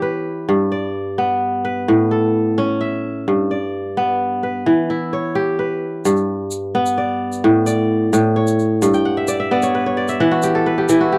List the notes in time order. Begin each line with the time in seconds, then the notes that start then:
Already playing: E3 B3 E4 G4 C#5
0.02 B4
0.49 G2
0.72 D5
1.18 B3
1.65 B4
1.88 A2
2.11 A4
2.58 C#4
2.81 E5
3.28 G2
3.51 D5
3.97 B3
4.43 B4
4.66 E3
4.90 E4
5.13 C#5
5.35 G4
5.59 B4
6.05 G2, shaker
6.17 shaker
6.51 shaker
6.75 B3
6.86 shaker
6.98 D5
7.32 shaker
7.44 A2
7.66 D5, shaker
8.13 A2, shaker
8.36 C#5
8.47 shaker
8.59 shaker
8.82 G2, shaker
8.94 G5, shaker
9.05 F#5
9.17 E5
9.28 D5, shaker
9.40 E5
9.51 B3 D5
9.62 C#5, shaker
9.75 B4
9.86 C#5
9.97 D5
10.08 E5, shaker
10.20 E3 F#5
10.31 F#4
10.42 G4, shaker
10.55 A4
10.66 B4
10.78 G4
10.89 E3 E4, shaker
11.01 F#4
11.12 G4